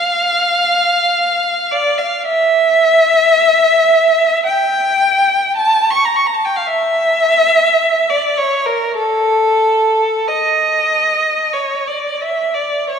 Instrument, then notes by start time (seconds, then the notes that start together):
violin
Already playing: F5
1.71 D5
1.98 F5
2.26 E5
4.46 G5
5.56 A5
5.90 C#6
6.05 A#5
6.16 C#6
6.27 A#5
6.34 A5
6.45 G5
6.56 F5
6.67 E5
8.10 D5
8.37 C#5
8.66 A#4
8.96 A4
10.28 D#5
11.53 C#5
11.87 D5
12.21 E5
12.54 D5
12.90 C#5